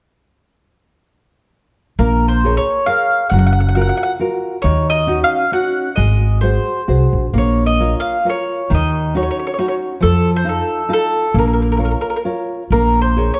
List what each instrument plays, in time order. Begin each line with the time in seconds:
1.99 upright bass A#1, nylon-string guitar A#3, mandolin A#4
2.28 mandolin C5
2.44 nylon-string guitar G#4 A#4 C#5
2.57 mandolin C#5
2.86 nylon-string guitar G#4 A#4 C#5, mandolin F5
3.29 upright bass F#1, nylon-string guitar F#3, mandolin F#5
3.38 mandolin F#5
3.46 mandolin F#5
3.52 mandolin F#5
3.60 mandolin F#5
3.69 mandolin F#5
3.75 nylon-string guitar F4 F#4 A#4, mandolin F#5
3.81 mandolin F#5
3.89 mandolin F#5
3.97 mandolin F#5
4.03 mandolin F#5
4.19 nylon-string guitar F4 F#4 A#4
4.62 upright bass D#2, nylon-string guitar D#3, mandolin C#5
4.90 mandolin D#5
5.07 nylon-string guitar C#4 D#4 F#4
5.24 mandolin F5
5.52 nylon-string guitar C#4 D#4 F#4, mandolin F#5
5.95 upright bass G#1, nylon-string guitar G#3, mandolin D#5
6.41 nylon-string guitar F#4 G#4 C5, mandolin C5
6.88 upright bass C2, nylon-string guitar F#4 G#4 C5
7.13 upright bass A#1
7.33 upright bass A#1, nylon-string guitar A#3
7.38 mandolin C#5
7.66 mandolin D#5
7.80 nylon-string guitar F4 A#4 C#5
8.00 mandolin F5
8.25 nylon-string guitar F4 A#4 C#5
8.30 mandolin C#5
8.70 upright bass D#2, nylon-string guitar D#3
8.74 mandolin D#5
9.14 nylon-string guitar C#4 D#4 F#4, mandolin C#5
9.23 mandolin C#5
9.31 mandolin C#5
9.39 mandolin C#5
9.47 mandolin C#5
9.54 mandolin C#5
9.58 nylon-string guitar C#4 D#4 F#4, mandolin C#5
9.68 mandolin C#5
10.00 upright bass F2, nylon-string guitar F3, mandolin A4
10.36 mandolin C5
10.44 nylon-string guitar D#4 F4 A4
10.49 mandolin A4
10.89 nylon-string guitar D#4 F4 A4
10.93 mandolin A4
11.34 upright bass A#1, nylon-string guitar A#3
11.39 mandolin A#4
11.47 mandolin A#4
11.53 mandolin A#4
11.62 mandolin A#4
11.72 mandolin A#4
11.77 nylon-string guitar F4 A#4 C#5, mandolin A#4
11.85 mandolin A#4
11.91 mandolin A#4
12.01 mandolin A#4
12.10 mandolin A#4
12.16 mandolin A#4
12.25 nylon-string guitar F4 A#4 C#5
12.70 upright bass A#1, nylon-string guitar A#3, mandolin A#4
13.02 mandolin C5
13.17 nylon-string guitar G#4 A#4 C#5
13.34 mandolin C#5